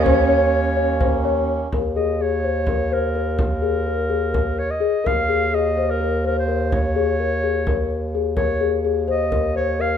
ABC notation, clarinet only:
X:1
M:7/8
L:1/16
Q:1/4=126
K:Cphr
V:1 name="Clarinet"
d12 z2 | z2 e2 d6 B4 | B8- B2 d e3 | f4 e3 B3 B c3 |
d12 z2 | d4 z2 e4 d2 f2 |]